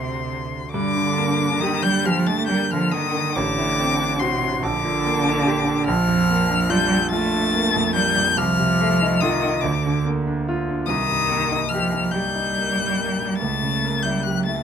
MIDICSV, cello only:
0, 0, Header, 1, 2, 480
1, 0, Start_track
1, 0, Key_signature, -2, "minor"
1, 0, Tempo, 888889
1, 391, Time_signature, 6, 3, 24, 8
1, 1341, Tempo, 857143
1, 2301, Tempo, 833333
1, 6621, Tempo, 846262
1, 8284, End_track
2, 0, Start_track
2, 0, Title_t, "Cello"
2, 0, Program_c, 0, 42
2, 0, Note_on_c, 0, 48, 76
2, 367, Note_off_c, 0, 48, 0
2, 392, Note_on_c, 0, 50, 106
2, 862, Note_on_c, 0, 51, 95
2, 870, Note_off_c, 0, 50, 0
2, 988, Note_on_c, 0, 55, 101
2, 996, Note_off_c, 0, 51, 0
2, 1109, Note_on_c, 0, 53, 104
2, 1117, Note_off_c, 0, 55, 0
2, 1224, Note_on_c, 0, 57, 99
2, 1232, Note_off_c, 0, 53, 0
2, 1342, Note_on_c, 0, 55, 109
2, 1350, Note_off_c, 0, 57, 0
2, 1462, Note_off_c, 0, 55, 0
2, 1472, Note_on_c, 0, 53, 97
2, 1591, Note_on_c, 0, 51, 96
2, 1600, Note_off_c, 0, 53, 0
2, 1836, Note_on_c, 0, 50, 98
2, 1845, Note_off_c, 0, 51, 0
2, 2310, Note_on_c, 0, 48, 92
2, 2319, Note_off_c, 0, 50, 0
2, 2553, Note_on_c, 0, 50, 109
2, 2561, Note_off_c, 0, 48, 0
2, 3267, Note_on_c, 0, 53, 110
2, 3276, Note_off_c, 0, 50, 0
2, 3748, Note_on_c, 0, 55, 105
2, 3757, Note_off_c, 0, 53, 0
2, 3979, Note_off_c, 0, 55, 0
2, 3983, Note_on_c, 0, 57, 111
2, 4462, Note_on_c, 0, 55, 100
2, 4470, Note_off_c, 0, 57, 0
2, 4703, Note_off_c, 0, 55, 0
2, 4709, Note_on_c, 0, 53, 113
2, 5192, Note_on_c, 0, 51, 100
2, 5200, Note_off_c, 0, 53, 0
2, 5425, Note_on_c, 0, 50, 87
2, 5434, Note_off_c, 0, 51, 0
2, 5664, Note_off_c, 0, 50, 0
2, 6145, Note_on_c, 0, 51, 106
2, 6600, Note_off_c, 0, 51, 0
2, 6621, Note_on_c, 0, 53, 94
2, 6868, Note_on_c, 0, 55, 91
2, 6877, Note_off_c, 0, 53, 0
2, 7585, Note_on_c, 0, 57, 84
2, 7594, Note_off_c, 0, 55, 0
2, 7941, Note_on_c, 0, 55, 73
2, 7949, Note_off_c, 0, 57, 0
2, 8062, Note_on_c, 0, 54, 78
2, 8071, Note_off_c, 0, 55, 0
2, 8184, Note_on_c, 0, 57, 68
2, 8193, Note_off_c, 0, 54, 0
2, 8284, Note_off_c, 0, 57, 0
2, 8284, End_track
0, 0, End_of_file